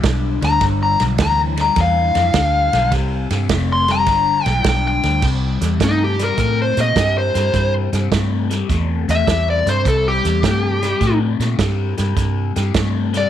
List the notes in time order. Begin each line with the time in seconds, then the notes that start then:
0.03 B1 G2 D3, kick, snare, ride
0.41 D2 G2 D3 A#5, snare, ride
0.60 G1 G2 D3, kick, snare, ride
0.83 A#5
1.00 B1 G2 D3, snare, ride
1.18 D2 G2 E3, kick, snare, ride
1.22 A#5
1.57 G2 D3, snare, ride
1.61 A#5
1.76 E2 G2 E3, kick, snare, ride
1.81 F5
2.15 F2 G2 E3, snare, ride
2.34 D2 G2 D3, kick, snare, ride
2.73 B1 G2 D3, snare, ride
2.92 C2 C3 G3, kick, snare, ride
3.30 G2 C3 G3, snare, ride
3.49 F1 C3 A3, kick, snare, ride
3.72 C6
3.88 C3 G3 A#5, snare, ride
4.06 G1 G2 D3, kick, snare, ride
4.45 B1 G2 E3 G5, snare, ride
4.64 B1 G2 D3, kick, snare, ride
4.69 G5
4.88 G5
5.03 D2 G2 D3, snare, ride
5.22 C2 C3 G3, kick, snare, crash
5.61 E2 C3 G3, snare, closed hi-hat
5.80 G2 C3 A3 D#4, kick, snare, closed hi-hat
6.04 G4
6.19 C3 G3, snare, closed hi-hat
6.24 A#4
6.38 A2 C3 A3, kick, snare, closed hi-hat
6.62 C5
6.77 A#2 C3 A3, snare, closed hi-hat
6.81 D#5
6.96 G2 C3 G3, kick, snare, closed hi-hat
7.18 C5
7.34 G2 C3 G3, snare, closed hi-hat
7.53 G2 C3 G3, kick, snare, closed hi-hat
7.93 G2 C3 G3, snare, closed hi-hat
8.12 G2 C3 A3, kick, snare, closed hi-hat
8.50 C3 G3, snare, closed hi-hat
8.69 E2 C3 A3, kick, snare, closed hi-hat
9.08 E2 C3 A3 E5, snare, closed hi-hat
9.27 E2 C3 G3, kick, snare, closed hi-hat
9.50 D5
9.66 G2 C3 G3 C5, snare, closed hi-hat
9.85 C2 C3 G3 A4, kick, snare, closed hi-hat
10.08 G4
10.24 E2 C3 G3, snare, closed hi-hat
10.43 G2 C3 A3, kick, snare, closed hi-hat
10.82 C3 G3, snare, closed hi-hat
11.01 A2 C3 A3, kick, snare, closed hi-hat
11.39 A#2 C3 A3, snare, closed hi-hat
11.59 G2 C3 G3, kick, snare, closed hi-hat
11.98 G2 C3 G3, snare, closed hi-hat
12.16 G2 C3 G3, kick, snare, closed hi-hat
12.56 G2 C3 G3, snare, closed hi-hat
12.74 G2 C3 A3, kick, snare, closed hi-hat
13.13 C3 G3, snare, closed hi-hat
13.17 D5